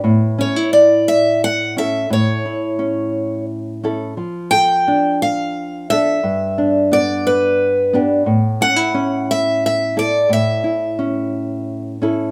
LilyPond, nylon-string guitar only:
\new Staff \with { instrumentName = "Nylon-string guitar" } { \time 6/8 \key a \mixolydian \tempo 4. = 58 << { r8 cis'16 e'4.~ e'16 <cis' e' a'>8 | r8 e'8 cis'4. <cis' e' a'>8 | r8 a'8 d'4. <d' a'>8 | r8 d'8 b4. <b d' g'>8 |
r8 cis'16 e'16 cis'4. <e' a'>8 | r8 e'8 cis'4. <cis' e' a'>8 | } \\ { a,2. | a,2. | f2. | g,2. |
a,2. | a,2. | } >> }